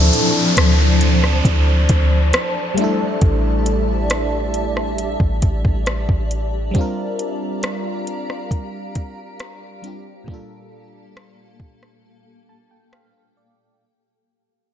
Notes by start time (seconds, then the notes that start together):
Already playing: D2 F3 C4 D4 E4 A4 C5 D5 A5, downlifter
0.13 closed hi-hat
0.57 D2, cross-stick, closed hi-hat
1.01 closed hi-hat
1.24 cross-stick
1.45 D2, kick, closed hi-hat
1.89 D2, kick, closed hi-hat
2.33 cross-stick, closed hi-hat
2.74 G3 A3 G4 E5, closed hi-hat
2.79 D4 E4
2.84 A4
3.21 A1, kick, closed hi-hat
3.66 closed hi-hat
4.10 cross-stick, closed hi-hat
4.54 closed hi-hat
4.77 cross-stick
4.98 closed hi-hat
5.20 A1, kick
5.42 A1, kick, closed hi-hat
5.65 A1, kick
5.86 cross-stick, closed hi-hat
6.09 A1, kick
6.31 closed hi-hat
6.71 G3 C4 G4 F5 A#5, kick, closed hi-hat
6.76 D4 F4
6.81 A#4
7.19 closed hi-hat
7.63 cross-stick, closed hi-hat
8.07 closed hi-hat
8.30 cross-stick
8.51 kick, closed hi-hat
8.95 kick, closed hi-hat
9.40 cross-stick, closed hi-hat
9.82 G3 C4 D4 F4, closed hi-hat
9.87 G4
10.24 A#2 G3 A#3 A4 F5 A5, kick
10.30 D4 F4 A4
11.17 cross-stick
11.60 kick
11.83 cross-stick
12.04 G5
12.49 A5
12.71 G5
12.93 F5, cross-stick
13.37 D5